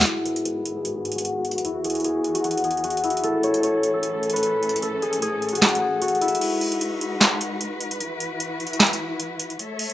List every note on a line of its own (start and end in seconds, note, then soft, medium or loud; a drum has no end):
0.00 1.64 E4 medium
0.00 1.15 F#4 medium
0.00 snare loud
0.06 1.63 G#2 medium
0.06 1.63 D#3 medium
0.06 3.20 B3 medium
0.06 3.20 F#4 medium
0.06 0.75 G#4 medium
0.06 closed hi-hat medium
0.26 0.45 B4 medium
0.26 closed hi-hat medium
0.36 closed hi-hat medium
0.45 2.50 B4 medium
0.45 closed hi-hat medium
0.66 closed hi-hat medium
0.76 0.95 G#4 medium
0.85 closed hi-hat medium
0.96 1.84 G#4 medium
1.05 closed hi-hat soft
1.12 2.34 F#4 medium
1.12 closed hi-hat medium
1.18 closed hi-hat medium
1.25 closed hi-hat medium
1.45 closed hi-hat medium
1.51 closed hi-hat medium
1.58 closed hi-hat medium
1.65 3.22 E2 medium
1.65 6.38 E3 medium
1.65 3.03 E4 medium
1.65 closed hi-hat medium
1.84 2.04 G#4 medium
1.84 closed hi-hat medium
1.90 closed hi-hat medium
1.95 closed hi-hat medium
2.00 closed hi-hat soft
2.04 2.64 G#4 medium
2.04 closed hi-hat medium
2.24 closed hi-hat soft
2.35 2.44 F#4 medium
2.35 closed hi-hat medium
2.44 2.84 F#4 medium
2.44 closed hi-hat medium
2.51 closed hi-hat medium
2.57 closed hi-hat medium
2.64 3.30 G#4 medium
2.64 closed hi-hat medium
2.71 closed hi-hat soft
2.77 closed hi-hat soft
2.84 5.28 F#4 medium
2.84 closed hi-hat medium
2.90 closed hi-hat medium
2.97 closed hi-hat medium
3.04 5.65 E4 medium
3.04 closed hi-hat medium
3.10 closed hi-hat medium
3.17 closed hi-hat medium
3.24 6.38 A2 medium
3.24 6.38 C#4 medium
3.24 6.38 A4 medium
3.24 3.93 A4 medium
3.24 closed hi-hat medium
3.43 3.63 C#5 medium
3.43 closed hi-hat medium
3.54 closed hi-hat medium
3.63 5.55 C#5 medium
3.63 closed hi-hat medium
3.83 closed hi-hat medium
3.94 4.13 A4 medium
4.03 closed hi-hat medium
4.14 4.82 A4 medium
4.23 closed hi-hat soft
4.30 6.38 B4 medium
4.30 closed hi-hat medium
4.36 closed hi-hat medium
4.43 closed hi-hat medium
4.63 closed hi-hat soft
4.69 closed hi-hat medium
4.76 closed hi-hat medium
4.82 5.08 A4 medium
4.82 closed hi-hat medium
5.02 5.22 G#4 medium
5.02 closed hi-hat soft
5.13 closed hi-hat medium
5.22 5.81 G#4 medium
5.22 closed hi-hat medium
5.42 closed hi-hat soft
5.49 5.61 F#4 medium
5.49 closed hi-hat medium
5.55 closed hi-hat medium
5.62 6.01 F#4 medium
5.62 snare loud
5.62 clap medium
5.62 closed hi-hat soft
5.69 closed hi-hat medium
5.75 closed hi-hat medium
5.82 8.09 G#4 medium
6.01 8.45 F#4 medium
6.01 closed hi-hat medium
6.08 closed hi-hat medium
6.15 closed hi-hat soft
6.21 8.83 E4 medium
6.21 closed hi-hat medium
6.28 closed hi-hat medium
6.35 closed hi-hat medium
6.41 7.99 G#3 medium
6.41 7.99 D#4 medium
6.41 7.99 F#4 medium
6.41 9.56 B4 medium
6.41 closed hi-hat medium
6.41 crash medium
6.61 closed hi-hat medium
6.61 open hi-hat medium
6.72 closed hi-hat medium
6.81 closed hi-hat medium
7.01 closed hi-hat medium
7.21 snare loud
7.21 clap medium
7.21 closed hi-hat medium
7.41 closed hi-hat medium
7.61 closed hi-hat medium
7.81 closed hi-hat medium
7.91 closed hi-hat medium
8.00 9.58 E3 medium
8.00 9.58 E4 medium
8.00 9.58 F#4 medium
8.00 closed hi-hat medium
8.20 closed hi-hat medium
8.40 closed hi-hat medium
8.60 closed hi-hat soft
8.67 closed hi-hat medium
8.73 closed hi-hat medium
8.80 snare loud
8.80 clap medium
8.80 closed hi-hat medium
8.87 closed hi-hat medium
8.93 closed hi-hat medium
9.20 closed hi-hat medium
9.40 closed hi-hat medium
9.50 closed hi-hat medium
9.59 9.93 A3 medium
9.59 9.93 A4 medium
9.59 9.93 C#5 medium
9.59 9.93 E5 medium
9.59 closed hi-hat medium
9.79 closed hi-hat medium
9.79 open hi-hat medium
9.90 closed hi-hat medium